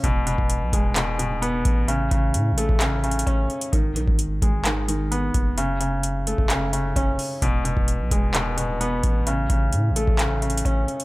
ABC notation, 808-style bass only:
X:1
M:4/4
L:1/16
Q:1/4=130
K:E
V:1 name="808-style bass" clef=bass
E,,,3 E,,,2 B,,, E,,,4 D,,,2 E,,,2 A,,,2- | A,,,2 A,,,2 A,,3/2 A,,,3/2 A,,,4- A,,, A,,,2 z2 | G,,,2 B,,, G,,,3 G,,,8 F,,,2- | F,,,6- F,,, F,,,4- F,,, F,,,2 z2 |
E,,,3 E,,,2 B,,, E,,,4 D,,,2 E,,,2 A,,,2- | A,,,2 A,,,2 A,,3/2 A,,,3/2 A,,,4- A,,, A,,,2 z2 |]